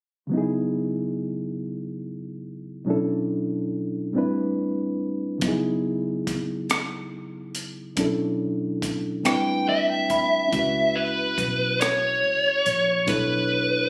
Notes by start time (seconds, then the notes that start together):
0.27 C#3 F#3
0.32 B3 D#4 E4
0.38 G#4
2.85 B2 F#3 C#4 D4
2.89 E4 A4
4.13 A2 G3 C4 D4
4.17 E4 B4
5.38 C#3 F#3 B3, kick, closed hi-hat
5.44 D#4 E4
5.48 G#4
6.27 kick, closed hi-hat
6.70 cross-stick, closed hi-hat
7.55 closed hi-hat
7.96 B2 F#3 C#4 D4 E4, kick, closed hi-hat
8.01 A4
8.82 kick, closed hi-hat
9.23 A2 G3 C4 D4 E4 G5, cross-stick, closed hi-hat
9.28 B4
9.69 E5
9.90 G5
10.10 B5, kick, closed hi-hat
10.48 C#4 E4
10.53 C#2 F#4 E5, kick, closed hi-hat
10.59 B4
10.96 B4
11.38 B1, kick, closed hi-hat
11.81 C#5, cross-stick, closed hi-hat
12.24 C#2
12.66 A#1, closed hi-hat
13.07 B1 D4 E4 A4 B4, kick, closed hi-hat
13.12 C#5